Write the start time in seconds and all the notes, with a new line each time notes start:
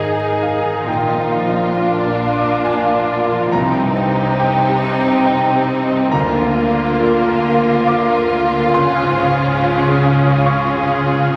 Already playing: G#1 G#2 D#3 A#3 D#4 G#4 A#4 D#5 F5 G#5 A#5
0.00 D#5 G#5
0.19 A#4
0.28 A#4
0.41 D#4 F5
0.57 G#4
0.63 D#3
0.86 A#1 A#2 F4 A#4 G5
1.09 F3
1.17 F3
1.32 D4
1.47 D4
1.54 F4
1.76 D4 F4 A#4
1.99 D5
2.07 A#4
2.21 F5
2.36 D5
2.44 A#5
2.65 F5 G#5
2.88 A#4
2.95 A#4
3.10 D4
3.25 F4
3.31 F3
3.52 C2 C3 C4 D#4 G4 A#5
3.75 G3
3.82 G2
3.97 C4
4.11 C4
4.19 D#4
4.39 D#4 G4 G5
4.62 C5
4.69 G4
4.84 D#5
4.98 C5
5.05 G5
5.25 D#5 G5
5.49 G4
5.55 G4
5.70 C4
5.83 D#4
5.91 G3
6.11 D2 D3 A#3 F4 A#4 A#5
6.34 D4
6.41 D3
6.56 A#3
6.70 A#3
6.77 F4
6.99 F4 A#4
7.21 F4
7.28 A#4
7.43 F5
7.58 F4
7.66 A#5
7.87 F5 D6
8.09 A#4
8.17 A#4
8.31 A#3
8.46 F4
8.53 D4
8.74 C#2 C#3 C#4 G#4 C6
8.95 G#3
9.03 G#2
9.18 C#4
9.33 C#4
9.38 F4
9.60 F4 G#4
9.81 C#5
9.88 G#4
10.03 F5
10.17 C#5
10.25 G#5
10.46 F5 C#6
10.69 G#4
10.77 G#4
10.91 C#4
11.06 F4
11.13 G#3